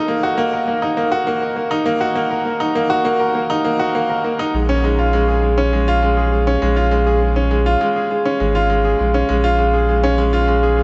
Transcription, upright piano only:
0.00 0.82 D#4 loud
0.08 0.23 A#3 medium
0.23 0.32 F#4 medium
0.38 0.46 A#3 loud
0.53 0.67 A#4 medium
0.68 0.82 A#3 medium
0.82 0.97 D#4 medium
0.97 1.12 A#3 medium
1.12 1.21 F#4 loud
1.27 1.36 A#3 loud
1.41 1.56 A#4 medium
1.56 1.71 A#3 medium
1.71 1.86 D#4 loud
1.86 2.00 A#3 loud
2.01 2.10 F#4 loud
2.15 2.25 A#3 loud
2.30 2.45 A#4 medium
2.45 2.60 A#3 medium
2.60 2.75 D#4 loud
2.75 2.90 A#3 loud
2.90 2.99 F#4 loud
3.05 3.14 A#3 loud
3.20 3.34 A#4 medium
3.35 3.49 A#3 medium
3.50 3.64 D#4 loud
3.65 3.79 A#3 loud
3.79 3.88 F#4 loud
3.95 4.03 A#3 loud
4.09 4.24 A#4 medium
4.24 4.39 A#3 medium
4.39 4.53 D#4 loud
4.55 4.69 G#3 medium
4.69 4.83 C#4 loud
4.84 4.98 G#3 medium
4.99 5.07 F4 medium
5.13 5.22 G#3 loud
5.28 5.42 G#4 medium
5.43 5.57 G#3 medium
5.58 5.72 C#4 loud
5.73 5.87 G#3 medium
5.88 5.96 F4 loud
6.02 6.11 G#3 loud
6.17 6.32 G#4 medium
6.32 6.46 G#3 medium
6.47 6.61 C#4 loud
6.62 6.76 G#3 loud
6.76 6.85 F4 medium
6.91 7.00 G#3 loud
7.06 7.21 G#4 medium
7.21 7.36 G#3 medium
7.36 7.50 C#4 medium
7.51 7.65 G#3 loud
7.66 7.75 F4 loud
7.81 7.89 G#3 loud
7.96 8.10 G#4 medium
8.11 8.25 G#3 medium
8.25 8.40 C#4 loud
8.40 8.54 G#3 medium
8.55 8.64 F4 loud
8.70 8.78 G#3 loud
8.85 8.99 G#4 medium
8.99 9.14 G#3 medium
9.14 9.29 C#4 medium
9.29 9.43 G#3 loud
9.44 9.53 F4 loud
9.58 9.67 G#3 medium
9.74 9.88 G#4 medium
9.89 10.03 G#3 medium
10.04 10.18 C#4 loud
10.18 10.32 G#3 loud
10.33 10.42 F4 loud
10.48 10.57 G#3 medium
10.63 10.77 G#4 medium
10.77 10.83 G#3 medium

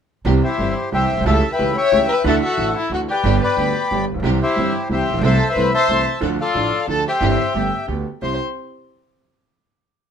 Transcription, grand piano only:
0.25 0.39 C2 medium
0.25 0.39 C3 medium
0.25 0.39 E3 medium
0.25 0.39 G3 medium
0.25 0.40 C4 medium
0.25 0.40 G4 medium
0.57 0.72 G1 medium
0.57 0.72 G2 medium
0.57 0.72 E3 medium
0.57 0.72 G3 medium
0.57 0.73 C4 soft
0.57 0.73 G4 medium
0.92 1.06 C2 medium
0.92 1.06 C3 medium
0.92 1.06 E3 medium
0.92 1.06 G3 soft
0.92 1.06 C4 soft
0.92 1.06 G4 medium
1.13 1.17 A#1 soft
1.18 1.22 B1 medium
1.18 1.26 C2 medium
1.25 1.40 C#2 loud
1.25 1.40 C#3 medium
1.25 1.40 E3 medium
1.25 1.40 A3 medium
1.25 1.40 C#4 medium
1.25 1.40 G4 medium
1.58 1.73 C#2 medium
1.58 1.73 C#3 medium
1.58 1.72 E3 medium
1.58 1.73 A3 soft
1.58 1.73 C#4 medium
1.58 1.73 G4 medium
1.91 2.06 C#2 medium
1.91 2.06 C#3 medium
1.91 2.06 E3 medium
1.91 2.06 A3 medium
1.91 2.06 C#4 medium
1.91 2.06 G4 medium
2.24 2.39 D2 loud
2.24 2.39 D3 loud
2.24 2.39 E3 medium
2.24 2.39 A3 medium
2.24 2.39 D4 medium
2.24 2.39 F#4 medium
2.57 2.72 A1 medium
2.57 2.72 A2 medium
2.57 2.72 E3 medium
2.57 2.72 A3 medium
2.57 2.72 D4 medium
2.57 2.72 F#4 medium
2.91 3.05 D2 medium
2.91 3.05 D3 medium
2.91 3.05 E3 soft
2.91 3.05 A3 soft
2.91 3.05 D4 soft
2.91 3.05 F#4 medium
3.24 3.38 G1 medium
3.24 3.38 G2 medium
3.24 3.38 D3 medium
3.24 3.38 G3 medium
3.24 3.38 B3 medium
3.24 3.38 G4 medium
3.57 3.72 D2 medium
3.57 3.72 D3 medium
3.57 3.71 G3 soft
3.57 3.72 B3 soft
3.57 3.72 G4 medium
3.91 4.05 G1 medium
3.91 4.05 G2 medium
3.91 4.05 D3 medium
3.91 4.05 G3 soft
3.91 4.05 B3 soft
3.91 4.05 G4 medium
4.10 4.15 A1 soft
4.15 4.19 A#1 medium
4.19 4.24 B1 medium
4.19 4.38 E3 medium
4.19 4.38 G3 medium
4.19 4.38 G4 medium
4.23 4.38 C2 medium
4.23 4.38 C3 medium
4.23 4.38 C4 medium
4.56 4.71 G1 medium
4.56 4.71 G2 medium
4.56 4.71 E3 medium
4.56 4.71 G3 soft
4.56 4.71 C4 soft
4.56 4.71 G4 medium
4.89 5.04 C2 medium
4.89 5.04 C3 medium
4.89 5.04 E3 medium
4.89 5.04 G3 soft
4.89 5.04 C4 soft
4.89 5.04 G4 medium
5.09 5.15 A1 soft
5.13 5.19 A#1 medium
5.19 5.23 B1 medium
5.19 5.37 C3 medium
5.19 5.37 E3 medium
5.23 5.37 C2 medium
5.23 5.37 A3 medium
5.23 5.37 C4 medium
5.23 5.37 A4 medium
5.56 5.71 C2 medium
5.56 5.70 C3 medium
5.56 5.70 E3 medium
5.56 5.70 A3 soft
5.56 5.71 C4 medium
5.56 5.71 A4 medium
5.90 6.04 C2 medium
5.90 6.04 C3 medium
5.90 6.04 E3 medium
5.90 6.04 A3 medium
5.90 6.04 C4 soft
5.90 6.04 A4 medium
6.21 6.36 D2 medium
6.21 6.36 D3 medium
6.21 6.36 F3 medium
6.21 6.36 A3 medium
6.21 6.36 D4 medium
6.21 6.36 A4 medium
6.54 6.69 A1 medium
6.54 6.69 A2 medium
6.54 6.69 F3 medium
6.54 6.69 A3 soft
6.54 6.69 D4 soft
6.54 6.69 A4 medium
6.88 7.02 D2 medium
6.88 7.02 D3 medium
6.88 7.02 F3 medium
6.88 7.02 A3 medium
6.88 7.02 D4 medium
6.88 7.02 A4 medium
7.21 7.36 G1 medium
7.21 7.36 G2 medium
7.21 7.36 E3 medium
7.21 7.35 G3 medium
7.21 7.36 C4 medium
7.21 7.36 G4 medium
7.55 7.69 G1 medium
7.55 7.69 G2 medium
7.55 7.69 D3 medium
7.55 7.69 A3 soft
7.55 7.69 B3 medium
7.55 7.70 G4 medium
7.87 8.03 D2 medium
7.87 8.03 D3 medium
7.87 8.03 A3 soft
7.87 8.03 B3 soft
7.87 8.03 G4 medium
8.22 8.36 C2 medium
8.22 8.36 C4 medium
8.22 8.36 E4 medium
8.22 8.36 G4 medium

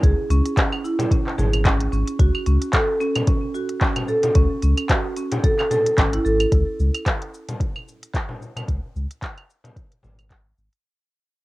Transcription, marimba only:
0.03 0.29 G#4 medium
0.30 0.56 C#4 loud
0.57 0.72 C#4 medium
0.84 0.93 E4 medium
1.11 1.37 C#4 medium
1.38 1.64 G#4 medium
1.65 1.91 C#4 loud
1.92 2.07 C#4 medium
2.19 2.28 F#4 medium
2.46 2.72 C#4 medium
2.73 2.99 A4 medium
3.00 3.26 C#4 loud
3.27 3.42 C#4 medium
3.54 3.63 F#4 medium
3.82 4.07 C#4 medium
4.08 4.34 A4 medium
4.35 4.61 C#4 loud
4.63 4.77 C#4 medium
4.90 4.98 F#4 medium
5.17 5.43 C#4 medium
5.44 5.57 A4 medium
5.71 5.85 A4 medium
5.98 6.12 C#4 medium
6.13 6.24 E4 medium
6.25 6.39 A4 medium

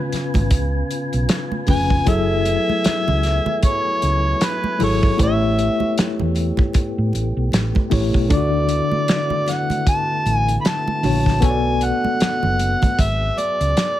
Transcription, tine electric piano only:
0.00 1.66 C#3 medium
0.00 1.67 C#4 loud
0.00 1.68 F4 medium
0.00 1.70 B4 loud
1.66 1.96 C#3 medium
1.66 1.96 C#4 medium
1.66 1.97 F4 medium
1.66 1.97 B4 medium
2.06 3.15 F#3 medium
2.06 3.15 E4 medium
2.06 3.16 G#4 medium
2.06 3.16 A4 loud
4.79 5.08 F#3 medium
4.79 5.08 E4 medium
4.79 5.09 G#4 medium
4.79 5.09 A4 medium
5.17 6.26 A3 loud
5.17 6.27 E4 medium
5.17 6.27 G4 medium
5.17 5.27 C5 medium
5.27 6.31 C#5 loud
7.90 8.20 A3 medium
7.90 8.20 E4 medium
7.90 8.20 G4 medium
7.90 8.21 C#5 medium
8.29 9.38 D3 loud
8.29 9.38 D4 medium
8.29 8.38 F4 medium
8.29 9.39 D5 loud
8.37 9.42 F#4 medium
11.02 11.31 D3 medium
11.02 11.32 D4 medium
11.02 11.32 F#4 medium
11.02 11.33 C#5 medium
11.40 12.50 B3 loud
11.40 12.50 F#4 medium
11.40 12.51 A4 loud
11.40 11.51 C#5 medium
11.50 12.54 D5 loud

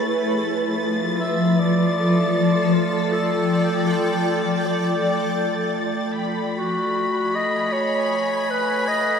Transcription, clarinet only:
1.20 1.61 E5 loud
1.59 2.76 D5 loud
2.74 3.14 F4 medium
3.12 3.89 A4 loud
3.87 4.68 F4 medium
4.66 5.80 D5 medium
6.57 7.37 F#4 medium
7.35 7.74 D#5 medium
7.73 8.52 C#5 medium
8.51 8.89 B4 medium
8.88 9.20 D#5 medium

